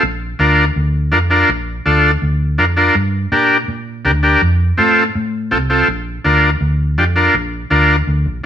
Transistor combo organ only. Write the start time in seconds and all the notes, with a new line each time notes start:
0.39 D4 F4 A#4
1.12 D4 F4 A#4
1.30 D4 F4 A#4
1.86 D4 F4 A4
2.58 D4 F4 A#4
2.76 D4 F4 A#4
3.32 D4 G4 A#4
4.05 D4 G4 A#4
4.23 D4 G4 A#4
4.77 C4 F4 A4
5.51 C4 F4 A4
5.70 C4 F4 A4
6.24 D4 F4 A#4
6.98 D4 F4 G4
7.16 D4 F4 A#4
7.70 D4 F4 A#4